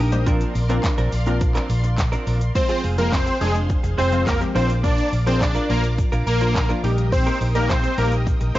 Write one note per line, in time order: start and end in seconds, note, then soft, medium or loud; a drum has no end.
0.00 0.42 A#1 medium
0.00 0.16 A#3 medium
0.00 1.94 D4 medium
0.00 0.12 D#4 medium
0.00 0.12 G4 medium
0.00 0.11 A#4 loud
0.00 2.51 A#4 medium
0.00 0.24 D#5 medium
0.00 0.24 G5 medium
0.00 0.24 D#6 medium
0.12 0.24 G3 medium
0.12 0.24 A#3 medium
0.12 0.24 D#4 medium
0.12 0.24 G4 medium
0.12 0.24 C5 medium
0.12 muted clean electric guitar stroke soft
0.12 closed hi-hat medium
0.12 shaker medium
0.26 0.53 F3 loud
0.26 0.62 A#3 medium
0.26 0.62 C4 medium
0.26 0.53 C4 loud
0.26 0.62 D4 medium
0.26 0.53 D4 loud
0.26 0.62 F4 medium
0.26 0.62 A#4 medium
0.26 0.53 A#4 loud
0.26 2.53 D5 medium
0.26 2.53 F5 medium
0.26 2.53 C6 medium
0.26 kick loud
0.26 closed hi-hat medium
0.26 shaker medium
0.41 closed hi-hat medium
0.41 shaker medium
0.41 shaker soft
0.55 0.77 A#1 loud
0.55 muted clean electric guitar stroke soft
0.55 open hi-hat medium
0.55 shaker medium
0.55 shaker soft
0.69 0.82 F3 medium
0.69 1.17 A#3 medium
0.69 1.17 C4 medium
0.69 0.83 C4 medium
0.69 1.17 D4 medium
0.69 0.83 D4 medium
0.69 1.17 F4 medium
0.69 0.83 A#4 medium
0.69 1.17 A#4 loud
0.69 closed hi-hat medium
0.69 shaker medium
0.69 shaker soft
0.84 kick loud
0.84 snare medium
0.84 clap loud
0.84 closed hi-hat medium
0.84 shaker medium
0.98 1.09 A#1 medium
0.98 1.11 F3 medium
0.98 1.11 C4 medium
0.98 1.12 D4 medium
0.98 1.12 A#4 medium
0.98 closed hi-hat medium
0.98 shaker medium
1.12 1.57 A#1 medium
1.12 muted clean electric guitar stroke soft
1.12 open hi-hat medium
1.12 shaker medium
1.26 2.21 A#3 medium
1.26 2.21 C4 medium
1.26 2.21 D4 medium
1.26 2.22 F4 medium
1.26 2.22 A#4 loud
1.26 muted clean electric guitar stroke soft
1.26 closed hi-hat soft
1.26 shaker medium
1.41 muted clean electric guitar stroke soft
1.41 kick loud
1.41 closed hi-hat medium
1.41 shaker medium
1.55 1.68 F3 medium
1.55 1.69 C4 medium
1.55 1.69 D4 medium
1.55 1.69 A#4 medium
1.55 clap medium
1.55 closed hi-hat medium
1.55 shaker medium
1.69 2.14 A#1 medium
1.69 muted clean electric guitar stroke soft
1.69 open hi-hat medium
1.69 shaker medium
1.84 muted clean electric guitar stroke soft
1.84 closed hi-hat soft
1.84 shaker medium
1.84 shaker soft
1.98 muted clean electric guitar stroke soft
1.98 kick loud
1.98 snare medium
1.98 clap loud
1.98 closed hi-hat medium
1.98 shaker medium
2.12 2.25 F3 medium
2.12 2.26 C4 medium
2.12 2.26 D4 medium
2.12 2.26 A#4 medium
2.12 closed hi-hat medium
2.12 shaker soft
2.12 shaker medium
2.26 2.49 A#1 medium
2.26 2.40 F3 medium
2.26 2.40 C4 medium
2.26 2.40 D4 medium
2.26 2.39 A#4 medium
2.26 open hi-hat medium
2.26 shaker soft
2.26 shaker medium
2.41 muted clean electric guitar stroke soft
2.41 closed hi-hat medium
2.41 shaker medium
2.55 2.91 F3 medium
2.55 2.91 G#3 medium
2.55 2.91 C4 medium
2.55 2.80 C4 medium
2.55 2.91 F4 medium
2.55 4.53 G#4 medium
2.55 2.80 C5 loud
2.55 4.53 C5 medium
2.55 4.53 F5 medium
2.55 4.53 C6 medium
2.55 muted clean electric guitar stroke soft
2.55 kick loud
2.55 shaker medium
2.69 2.82 G#3 medium
2.69 2.83 C4 medium
2.69 2.83 F4 medium
2.69 2.83 G#4 medium
2.69 closed hi-hat medium
2.69 shaker soft
2.83 3.28 F1 medium
2.83 2.97 G#3 medium
2.83 2.98 C4 medium
2.83 2.97 F4 medium
2.83 2.97 G#4 medium
2.83 open hi-hat medium
2.83 shaker medium
2.98 3.34 F3 medium
2.98 3.34 G#3 medium
2.98 3.11 A#3 medium
2.98 3.34 C4 medium
2.98 3.34 F4 medium
2.98 3.11 A#4 medium
2.98 muted clean electric guitar stroke soft
2.98 closed hi-hat medium
2.98 shaker soft
3.12 3.38 C4 medium
3.12 3.37 C5 medium
3.12 muted clean electric guitar stroke soft
3.12 kick loud
3.12 snare medium
3.12 clap loud
3.12 shaker medium
3.26 muted clean electric guitar stroke soft
3.26 closed hi-hat medium
3.26 shaker medium
3.41 3.74 F1 medium
3.41 4.00 F3 medium
3.41 4.00 G#3 medium
3.41 3.54 G#3 medium
3.41 4.00 C4 medium
3.41 4.00 D4 medium
3.41 3.53 G#4 medium
3.41 open hi-hat medium
3.55 muted clean electric guitar stroke soft
3.55 closed hi-hat medium
3.55 shaker medium
3.69 muted clean electric guitar stroke soft
3.69 kick loud
3.69 shaker medium
3.84 3.95 F1 medium
3.84 muted clean electric guitar stroke soft
3.84 closed hi-hat medium
3.84 shaker medium
3.98 4.42 F1 loud
3.98 4.15 G#3 medium
3.98 4.12 C4 medium
3.98 4.23 C4 medium
3.98 4.11 F4 loud
3.98 4.11 G#4 medium
3.98 4.23 C5 medium
3.98 open hi-hat medium
3.98 shaker medium
4.12 4.36 F3 medium
4.12 4.36 G#3 medium
4.12 4.36 C4 medium
4.12 4.36 F4 medium
4.12 muted clean electric guitar stroke medium
4.12 closed hi-hat medium
4.12 shaker soft
4.26 4.40 A#3 medium
4.26 4.39 A#4 medium
4.26 muted clean electric guitar stroke soft
4.26 kick loud
4.26 snare medium
4.26 clap loud
4.26 shaker medium
4.41 4.54 F3 medium
4.41 4.55 G#3 medium
4.41 4.55 C4 medium
4.41 4.55 G4 medium
4.41 muted clean electric guitar stroke soft
4.41 closed hi-hat medium
4.41 shaker soft
4.55 5.00 A#1 loud
4.55 5.14 F3 medium
4.55 4.73 A#3 medium
4.55 5.15 A#3 medium
4.55 4.68 C4 medium
4.55 4.69 D4 loud
4.55 5.15 D4 medium
4.55 5.15 F4 medium
4.55 4.68 F4 loud
4.55 8.59 A#4 medium
4.55 4.68 A#4 loud
4.55 4.68 C5 medium
4.55 6.82 D5 medium
4.55 6.82 F5 medium
4.55 6.82 D6 medium
4.55 open hi-hat medium
4.69 muted clean electric guitar stroke soft
4.69 closed hi-hat medium
4.69 shaker medium
4.83 5.10 A#3 medium
4.83 5.10 D4 medium
4.83 5.09 D4 medium
4.83 5.10 F4 medium
4.83 5.11 A#4 medium
4.83 5.09 D5 loud
4.83 kick loud
4.83 shaker medium
4.98 closed hi-hat medium
4.98 shaker soft
5.12 5.57 A#1 medium
5.12 muted clean electric guitar stroke soft
5.12 open hi-hat medium
5.12 shaker medium
5.26 5.62 F3 medium
5.26 5.62 A#3 medium
5.26 5.40 A#3 soft
5.26 5.40 C4 medium
5.26 5.62 D4 medium
5.26 5.40 D4 medium
5.26 5.40 F4 medium
5.26 5.62 G#4 medium
5.26 5.40 A#4 medium
5.26 5.39 C5 medium
5.26 closed hi-hat medium
5.26 shaker soft
5.41 5.66 D4 medium
5.41 5.66 D5 medium
5.41 kick loud
5.41 snare medium
5.41 clap loud
5.41 shaker medium
5.55 5.68 A#3 medium
5.55 5.68 D4 medium
5.55 5.69 F4 medium
5.55 5.69 A#4 medium
5.55 closed hi-hat medium
5.55 shaker medium
5.69 6.03 A#1 medium
5.69 6.29 F3 medium
5.69 6.29 A#3 medium
5.69 5.82 A#3 medium
5.69 6.29 D4 medium
5.69 6.29 F4 medium
5.69 5.82 A#4 medium
5.69 muted clean electric guitar stroke soft
5.69 open hi-hat medium
5.84 muted clean electric guitar stroke soft
5.84 closed hi-hat medium
5.84 shaker medium
5.98 muted clean electric guitar stroke soft
5.98 kick loud
5.98 shaker medium
6.12 6.23 A#1 medium
6.12 6.25 A#3 medium
6.12 6.26 D4 medium
6.12 6.26 F4 medium
6.12 6.26 A#4 medium
6.12 closed hi-hat soft
6.12 shaker medium
6.27 6.71 A#1 loud
6.27 6.67 A#3 medium
6.27 6.67 A#4 medium
6.27 open hi-hat medium
6.27 shaker medium
6.41 6.65 F3 medium
6.41 6.65 A#3 medium
6.41 6.65 D4 medium
6.41 6.65 F4 medium
6.41 muted clean electric guitar stroke soft
6.41 closed hi-hat medium
6.41 shaker medium
6.55 muted clean electric guitar stroke soft
6.55 kick loud
6.55 snare medium
6.55 clap loud
6.55 shaker medium
6.69 6.84 F3 medium
6.69 6.83 A#3 medium
6.69 6.82 A#3 medium
6.69 6.84 D4 medium
6.69 6.84 F4 medium
6.69 6.83 A#4 medium
6.69 closed hi-hat medium
6.69 shaker soft
6.83 7.28 A#1 loud
6.83 7.43 G3 medium
6.83 6.97 A#3 medium
6.83 7.43 A#3 medium
6.83 6.98 D#4 medium
6.83 7.43 D#4 medium
6.83 7.43 G4 loud
6.83 6.97 G4 medium
6.83 6.97 A#4 medium
6.83 8.59 D#5 medium
6.83 8.59 G5 medium
6.83 8.59 D#6 medium
6.83 open hi-hat medium
6.98 muted clean electric guitar stroke soft
6.98 closed hi-hat medium
6.98 shaker medium
7.12 7.38 C4 medium
7.12 7.37 C5 loud
7.12 muted clean electric guitar stroke soft
7.12 kick loud
7.12 shaker medium
7.26 7.40 A#3 medium
7.26 7.40 D#4 medium
7.26 7.40 G4 medium
7.26 7.41 A#4 medium
7.26 closed hi-hat medium
7.26 shaker soft
7.41 7.85 A#1 medium
7.41 7.55 A#3 medium
7.41 7.55 D#4 medium
7.41 7.54 G4 medium
7.41 7.54 A#4 medium
7.41 open hi-hat medium
7.41 shaker medium
7.55 7.91 G3 medium
7.55 7.91 A#3 medium
7.55 7.68 A#3 medium
7.55 7.91 D#4 medium
7.55 7.91 G4 medium
7.55 7.67 A#4 medium
7.55 muted clean electric guitar stroke soft
7.55 closed hi-hat medium
7.55 shaker soft
7.69 7.95 C4 medium
7.69 7.94 C5 medium
7.69 muted clean electric guitar stroke soft
7.69 kick loud
7.69 snare medium
7.69 clap loud
7.69 shaker medium
7.84 muted clean electric guitar stroke soft
7.84 closed hi-hat medium
7.84 shaker medium
7.98 8.31 A#1 loud
7.98 8.57 G3 medium
7.98 8.57 A#3 medium
7.98 8.11 A#3 medium
7.98 8.57 D#4 medium
7.98 8.58 G4 medium
7.98 8.10 A#4 medium
7.98 open hi-hat medium
8.12 muted clean electric guitar stroke soft
8.12 closed hi-hat medium
8.12 shaker medium
8.27 muted clean electric guitar stroke soft
8.27 kick loud
8.27 shaker medium
8.41 8.52 A#1 medium
8.41 muted clean electric guitar stroke soft
8.41 closed hi-hat soft
8.41 shaker medium
8.55 8.59 A#1 loud
8.55 8.59 A#3 medium
8.55 8.59 D#4 medium
8.55 8.59 G4 medium
8.55 8.59 C5 medium
8.55 open hi-hat medium
8.55 shaker soft